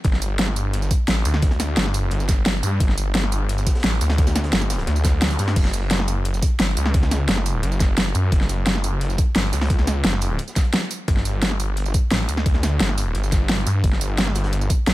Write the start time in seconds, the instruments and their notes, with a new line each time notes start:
0.04 detuned saw bass G1, kick, closed hi-hat
0.13 snare
0.22 closed hi-hat, tambourine
0.38 snare, closed hi-hat
0.48 snare
0.56 closed hi-hat, tambourine
0.74 closed hi-hat
0.82 snare, tambourine
0.91 kick, closed hi-hat, tambourine
1.08 detuned saw bass A1, snare, closed hi-hat
1.25 detuned saw bass D2, closed hi-hat, tambourine
1.34 snare
1.42 kick, closed hi-hat
1.51 snare, closed hi-hat
1.60 snare, closed hi-hat, tambourine
1.77 detuned saw bass G1, snare, closed hi-hat
1.86 snare
1.94 closed hi-hat, open hi-hat, tambourine
2.11 detuned saw bass G1, closed hi-hat
2.20 snare, tambourine
2.29 kick, snare, closed hi-hat, tambourine
2.46 snare, closed hi-hat
2.55 closed hi-hat
2.63 detuned saw bass G2, closed hi-hat, tambourine
2.80 detuned saw bass G1, kick, closed hi-hat
2.89 snare
2.98 closed hi-hat, tambourine
3.15 snare, closed hi-hat
3.23 snare
3.32 closed hi-hat, tambourine
3.49 closed hi-hat
3.58 snare, tambourine
3.66 kick, snare, closed hi-hat, tambourine
3.75 snare, closed hi-hat
3.79 snare, closed hi-hat
3.84 detuned saw bass A1, snare, closed hi-hat
4.01 detuned saw bass D2, snare, closed hi-hat, tambourine
4.10 snare, closed hi-hat
4.17 kick, snare, closed hi-hat
4.27 snare, closed hi-hat, tambourine
4.35 snare, closed hi-hat, tambourine
4.44 snare, closed hi-hat
4.52 detuned saw bass G1, snare, closed hi-hat
4.61 snare, tambourine
4.70 snare, closed hi-hat, open hi-hat, tambourine
4.78 snare, closed hi-hat
4.87 detuned saw bass D2, snare, closed hi-hat
4.95 snare, tambourine
5.04 kick, snare, closed hi-hat, tambourine
5.22 snare, closed hi-hat
5.30 snare, closed hi-hat, tambourine
5.39 detuned saw bass G2, snare, closed hi-hat, tambourine
5.47 snare, closed hi-hat
5.56 detuned saw bass F#1, kick, closed hi-hat, crash
5.65 snare
5.73 closed hi-hat, tambourine
5.90 snare, closed hi-hat
5.99 snare
6.08 closed hi-hat, tambourine
6.25 closed hi-hat
6.34 snare, tambourine
6.42 kick, closed hi-hat, tambourine
6.59 detuned saw bass G1, snare, closed hi-hat
6.77 detuned saw bass C#2, closed hi-hat, tambourine
6.86 snare
6.94 kick, closed hi-hat
7.03 snare, closed hi-hat
7.11 snare, closed hi-hat, tambourine
7.28 detuned saw bass F#1, snare, closed hi-hat
7.37 snare
7.45 closed hi-hat, open hi-hat, tambourine
7.63 detuned saw bass F#1, closed hi-hat
7.71 snare, tambourine
7.80 kick, snare, closed hi-hat, tambourine
7.98 snare, closed hi-hat
8.06 closed hi-hat
8.15 detuned saw bass F#2, closed hi-hat, tambourine
8.32 detuned saw bass F#1, kick, closed hi-hat
8.41 snare
8.49 closed hi-hat, tambourine
8.66 snare, closed hi-hat
8.75 snare
8.84 closed hi-hat, tambourine
9.01 closed hi-hat
9.10 snare, tambourine
9.18 kick, closed hi-hat, tambourine
9.36 detuned saw bass G1, snare, closed hi-hat
9.53 detuned saw bass C#2, snare, closed hi-hat, tambourine
9.61 snare, closed hi-hat
9.65 snare, closed hi-hat
9.70 kick, closed hi-hat
9.79 snare, closed hi-hat
9.87 snare, closed hi-hat, tambourine
10.04 detuned saw bass F#1, snare, closed hi-hat
10.13 snare
10.21 closed hi-hat, open hi-hat, tambourine
10.39 closed hi-hat
10.48 snare, tambourine
10.56 kick, snare, closed hi-hat, tambourine
10.65 closed hi-hat
10.73 snare, closed hi-hat
10.90 closed hi-hat, tambourine
11.08 detuned saw bass G1, kick, closed hi-hat
11.17 snare
11.25 closed hi-hat, tambourine
11.42 snare, closed hi-hat
11.51 snare
11.60 closed hi-hat, tambourine
11.77 closed hi-hat
11.86 snare, tambourine
11.94 kick, closed hi-hat, tambourine
12.11 detuned saw bass A1, snare, closed hi-hat
12.28 detuned saw bass D2, closed hi-hat, tambourine
12.37 snare
12.46 kick, closed hi-hat
12.54 snare, closed hi-hat
12.63 snare, closed hi-hat, tambourine
12.80 detuned saw bass G1, snare, closed hi-hat
12.89 snare
12.98 closed hi-hat, open hi-hat, tambourine
13.15 detuned saw bass G1, closed hi-hat
13.23 snare, tambourine
13.32 kick, snare, closed hi-hat, tambourine
13.49 snare, closed hi-hat
13.58 closed hi-hat
13.67 detuned saw bass G2, closed hi-hat, tambourine
13.84 detuned saw bass G1, kick, closed hi-hat
13.92 snare
14.01 closed hi-hat, tambourine
14.18 snare, closed hi-hat
14.27 snare
14.35 snare, closed hi-hat, tambourine
14.44 snare, closed hi-hat
14.52 closed hi-hat
14.61 tambourine
14.70 kick, closed hi-hat, tambourine
14.87 detuned saw bass A1, snare, closed hi-hat